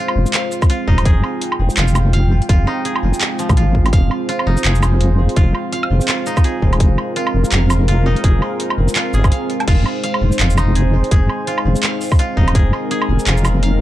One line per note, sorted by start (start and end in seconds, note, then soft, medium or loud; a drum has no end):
0.00 13.81 G#3 medium
0.00 13.81 C4 medium
0.00 0.87 D#4 loud
0.00 0.69 F4 loud
0.00 9.64 F4 medium
0.00 1.05 G#4 medium
0.00 1.05 C5 medium
0.08 low woodblock medium
0.16 0.25 F1 medium
0.26 shaker medium
0.34 1.78 F5 loud
0.34 clap loud
0.34 closed hi-hat medium
0.52 shaker medium
0.62 kick loud
0.62 low woodblock medium
0.62 shaker soft
0.70 1.77 F4 medium
0.70 closed hi-hat medium
0.88 1.04 D#1 loud
0.88 2.67 D#4 loud
0.88 kick medium
0.98 closed hi-hat soft
0.98 low woodblock medium
1.05 1.22 F1 medium
1.05 2.85 G#4 medium
1.05 3.92 G5 medium
1.05 kick loud
1.05 closed hi-hat medium
1.24 low woodblock soft
1.42 closed hi-hat medium
1.52 low woodblock medium
1.59 1.69 F1 medium
1.70 shaker medium
1.77 2.40 F1 loud
1.77 2.49 F4 loud
1.77 clap loud
1.77 closed hi-hat medium
1.88 shaker medium
1.95 low woodblock medium
1.95 shaker medium
2.13 3.57 F5 loud
2.13 closed hi-hat medium
2.42 closed hi-hat soft
2.49 2.66 F1 medium
2.49 3.56 F4 loud
2.49 kick loud
2.49 closed hi-hat medium
2.67 4.46 D#4 loud
2.67 low woodblock soft
2.85 4.64 G#4 medium
2.85 closed hi-hat medium
2.96 low woodblock medium
3.03 3.13 F1 medium
3.13 shaker medium
3.21 clap loud
3.21 closed hi-hat medium
3.39 6.77 F3 medium
3.39 closed hi-hat soft
3.39 shaker medium
3.49 3.58 C2 loud
3.49 kick loud
3.49 low woodblock medium
3.49 shaker soft
3.57 3.92 G#1 loud
3.57 4.28 F4 medium
3.57 closed hi-hat medium
3.75 kick medium
3.86 closed hi-hat soft
3.86 low woodblock medium
3.93 4.10 F1 loud
3.93 6.79 C5 medium
3.93 5.37 F5 loud
3.93 kick loud
3.93 closed hi-hat medium
4.11 low woodblock soft
4.29 5.36 F4 loud
4.29 closed hi-hat medium
4.39 low woodblock medium
4.47 4.56 F1 medium
4.47 6.26 D#4 loud
4.57 shaker medium
4.65 5.28 F1 loud
4.65 6.44 G#4 medium
4.65 clap loud
4.65 closed hi-hat medium
4.75 shaker medium
4.83 low woodblock medium
4.83 shaker medium
5.01 closed hi-hat medium
5.29 closed hi-hat soft
5.36 5.53 F1 medium
5.36 6.08 F4 loud
5.36 kick loud
5.36 closed hi-hat medium
5.55 low woodblock soft
5.72 7.17 F5 loud
5.72 closed hi-hat medium
5.83 low woodblock medium
5.90 6.00 F1 medium
6.01 shaker medium
6.08 7.16 F4 loud
6.08 clap loud
6.08 closed hi-hat medium
6.26 8.06 D#4 loud
6.26 shaker medium
6.37 kick loud
6.37 low woodblock medium
6.37 shaker soft
6.44 8.24 G#4 medium
6.44 closed hi-hat medium
6.62 6.79 D#1 loud
6.62 kick medium
6.73 closed hi-hat soft
6.73 low woodblock medium
6.80 6.97 F1 loud
6.80 9.67 A#4 medium
6.80 kick loud
6.80 closed hi-hat medium
6.98 low woodblock soft
7.16 7.88 F4 loud
7.16 closed hi-hat medium
7.27 low woodblock medium
7.34 7.44 F1 medium
7.45 shaker medium
7.52 8.15 F1 loud
7.52 8.96 F5 loud
7.52 clap loud
7.52 closed hi-hat medium
7.70 low woodblock medium
7.70 shaker medium
7.88 8.95 F4 loud
7.88 closed hi-hat medium
8.06 10.40 D#4 loud
8.16 closed hi-hat soft
8.24 8.41 F1 loud
8.24 9.14 G#4 medium
8.24 kick loud
8.24 closed hi-hat medium
8.42 low woodblock soft
8.60 closed hi-hat medium
8.70 low woodblock medium
8.78 8.88 F1 medium
8.88 shaker medium
8.96 9.67 F4 loud
8.96 clap loud
8.96 closed hi-hat medium
9.13 9.32 G1 medium
9.13 10.75 G#4 loud
9.13 shaker medium
9.24 kick loud
9.24 low woodblock medium
9.24 shaker soft
9.32 10.03 F5 medium
9.32 closed hi-hat medium
9.50 closed hi-hat soft
9.60 closed hi-hat soft
9.60 low woodblock medium
9.68 9.84 F1 medium
9.68 13.81 D#4 medium
9.68 10.39 F4 loud
9.68 12.54 C5 medium
9.68 kick loud
9.68 closed hi-hat medium
9.68 crash medium
9.86 low woodblock soft
10.04 11.48 F5 loud
10.04 closed hi-hat medium
10.14 low woodblock medium
10.21 10.31 F1 medium
10.32 shaker medium
10.39 11.03 F1 loud
10.39 11.47 F4 loud
10.39 clap loud
10.39 closed hi-hat medium
10.50 shaker medium
10.58 12.37 D#4 loud
10.58 low woodblock medium
10.58 shaker medium
10.75 11.11 G#4 medium
10.75 closed hi-hat medium
11.04 closed hi-hat soft
11.11 11.28 F1 loud
11.11 12.55 G#4 loud
11.11 kick loud
11.11 closed hi-hat medium
11.29 low woodblock soft
11.47 12.19 F4 loud
11.47 closed hi-hat medium
11.58 low woodblock medium
11.65 11.75 F1 medium
11.76 shaker medium
11.83 13.27 F5 loud
11.83 clap loud
11.83 closed hi-hat medium
12.01 shaker medium
12.04 shaker soft
12.06 shaker soft
12.09 kick loud
12.09 low woodblock medium
12.09 shaker soft
12.12 shaker soft
12.14 shaker soft
12.19 13.26 F4 loud
12.19 closed hi-hat medium
12.37 12.54 D#1 loud
12.37 13.81 D#4 loud
12.37 kick medium
12.48 closed hi-hat soft
12.48 low woodblock medium
12.55 12.72 F1 loud
12.55 12.91 G#4 medium
12.55 13.81 A#4 medium
12.55 kick loud
12.55 closed hi-hat medium
12.73 low woodblock soft
12.91 13.81 G#4 loud
12.91 closed hi-hat medium
13.02 low woodblock medium
13.09 13.19 F1 medium
13.19 shaker medium
13.27 13.81 F1 loud
13.27 13.81 F4 loud
13.27 clap loud
13.27 closed hi-hat medium
13.37 shaker medium
13.45 low woodblock medium
13.45 shaker medium
13.63 13.81 F5 loud
13.63 closed hi-hat medium